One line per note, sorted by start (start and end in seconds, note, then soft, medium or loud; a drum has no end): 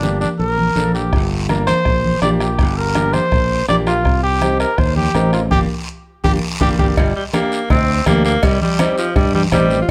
0.00 0.25 G1 medium
0.00 0.28 A#3 medium
0.00 0.17 D4 medium
0.00 0.28 D4 medium
0.00 0.29 G4 medium
0.00 high conga medium
0.00 short guiro medium
0.21 0.29 D4 medium
0.21 high conga medium
0.21 short guiro medium
0.39 0.69 A#1 medium
0.39 0.90 A#4 medium
0.39 high conga soft
0.39 long guiro medium
0.58 high conga medium
0.76 1.14 A#1 medium
0.76 1.01 A#3 medium
0.76 1.02 D4 medium
0.76 1.02 A4 medium
0.76 high conga medium
0.76 short guiro medium
0.94 1.28 G4 medium
0.94 short guiro medium
1.13 1.71 G1 medium
1.13 bombo low medium
1.13 bombo rim medium
1.13 high conga soft
1.13 long guiro medium
1.49 1.75 A#3 medium
1.49 1.75 D4 medium
1.49 1.75 A#4 medium
1.49 bombo rim medium
1.49 high conga medium
1.49 short guiro medium
1.67 2.18 C5 loud
1.67 bombo rim medium
1.67 high conga medium
1.67 short guiro medium
1.85 2.15 A#1 medium
1.85 bombo low medium
1.85 bombo rim medium
1.85 long guiro medium
2.04 high conga medium
2.22 2.60 A#1 medium
2.22 2.48 A#3 medium
2.22 2.48 D4 medium
2.22 2.48 G4 medium
2.22 2.30 D5 medium
2.22 bombo rim medium
2.22 high conga medium
2.22 short guiro medium
2.40 2.79 G4 medium
2.40 bombo rim medium
2.40 short guiro medium
2.58 3.17 G1 medium
2.58 bombo low medium
2.58 bombo rim medium
2.58 high conga soft
2.58 long guiro medium
2.77 3.15 A#4 medium
2.95 3.21 A#3 medium
2.95 3.21 D4 medium
2.95 3.21 G4 medium
2.95 bombo rim medium
2.95 high conga medium
2.95 short guiro medium
3.13 3.68 C5 loud
3.13 bombo rim medium
3.13 high conga medium
3.13 short guiro medium
3.31 3.61 A#1 medium
3.31 bombo low medium
3.31 bombo rim medium
3.31 long guiro medium
3.68 4.05 A#1 medium
3.68 3.94 A#3 medium
3.68 3.94 D4 medium
3.68 3.95 G4 medium
3.68 3.77 D5 medium
3.68 bombo rim medium
3.68 high conga medium
3.68 short guiro medium
3.87 4.21 F4 medium
3.87 bombo rim medium
3.87 short guiro medium
4.05 4.64 C2 medium
4.05 bombo low medium
4.05 bombo rim medium
4.05 high conga soft
4.05 long guiro medium
4.24 4.57 G4 medium
4.41 4.67 C4 medium
4.41 4.67 D#4 medium
4.41 4.67 G4 medium
4.41 bombo rim medium
4.41 high conga medium
4.41 short guiro medium
4.60 4.80 A#4 medium
4.60 bombo rim medium
4.60 short guiro medium
4.78 5.07 D#2 medium
4.78 4.96 C5 medium
4.78 bombo low medium
4.78 bombo rim medium
4.78 high conga soft
4.78 long guiro medium
4.96 5.30 G4 medium
4.96 high conga medium
5.14 5.51 A1 medium
5.14 5.40 C4 medium
5.14 5.40 D#4 medium
5.14 5.41 A#4 medium
5.14 bombo rim medium
5.14 high conga medium
5.14 short guiro medium
5.33 5.41 F4 medium
5.33 bombo rim medium
5.33 short guiro medium
5.51 5.65 G1 medium
5.51 5.63 A#3 medium
5.51 5.63 D4 medium
5.51 5.60 G4 medium
5.51 5.63 G4 medium
5.51 bombo low medium
5.51 high conga medium
5.51 long guiro medium
6.24 6.38 G1 medium
6.24 6.36 A#3 medium
6.24 6.36 D4 medium
6.24 6.33 G4 medium
6.24 6.36 G4 medium
6.24 bombo low medium
6.24 high conga medium
6.24 long guiro loud
6.61 6.74 G1 medium
6.61 6.95 G3 medium
6.61 6.73 A#3 loud
6.61 6.72 D4 loud
6.61 6.69 G4 medium
6.61 6.73 G4 loud
6.61 bombo low medium
6.61 high conga medium
6.61 long guiro medium
6.79 6.93 G1 medium
6.79 6.90 A#3 medium
6.79 6.91 D4 medium
6.79 6.91 G4 medium
6.79 6.88 G4 medium
6.79 bombo low medium
6.79 high conga medium
6.79 long guiro medium
6.97 7.12 G1 loud
6.97 7.14 G3 medium
6.97 bombo low medium
6.97 cowbell loud
6.97 high conga soft
6.97 low conga medium
6.97 long guiro medium
7.16 7.24 G3 medium
7.33 7.59 A#3 medium
7.33 7.68 A#3 medium
7.33 7.59 D4 medium
7.33 7.59 G4 medium
7.33 bombo rim medium
7.33 cowbell medium
7.33 high conga medium
7.33 short guiro medium
7.52 short guiro medium
7.70 7.99 D2 medium
7.70 8.04 C4 medium
7.70 bombo low medium
7.70 bombo rim medium
7.70 cowbell medium
7.70 high conga soft
7.70 low conga medium
7.70 long guiro medium
8.06 8.36 D2 medium
8.06 8.32 A#3 medium
8.06 8.23 A#3 medium
8.06 8.32 D4 medium
8.06 8.32 G4 medium
8.06 bombo rim medium
8.06 cowbell medium
8.06 high conga medium
8.06 low conga medium
8.06 short guiro medium
8.25 8.45 A#3 medium
8.25 short guiro medium
8.43 8.58 C2 medium
8.43 8.61 G3 medium
8.43 bombo low medium
8.43 cowbell loud
8.43 high conga soft
8.43 long guiro medium
8.61 8.79 G3 medium
8.61 high conga medium
8.79 8.97 G3 medium
8.79 9.05 C4 medium
8.79 9.05 D#4 medium
8.79 9.05 G4 medium
8.79 bombo rim medium
8.79 cowbell medium
8.79 high conga loud
8.79 short guiro medium
8.98 9.15 F3 medium
8.98 short guiro medium
9.16 9.45 G2 medium
9.16 9.33 G3 medium
9.16 bombo low medium
9.16 cowbell medium
9.16 high conga soft
9.16 low conga medium
9.16 long guiro medium
9.34 9.43 G3 medium
9.34 high conga medium
9.52 9.81 A1 medium
9.52 9.80 G3 loud
9.52 9.78 C4 medium
9.52 9.78 D#4 medium
9.52 9.78 G4 medium
9.52 bombo rim medium
9.52 cowbell medium
9.52 high conga medium
9.52 low conga medium
9.52 short guiro medium
9.70 short guiro medium
9.81 9.91 F4 medium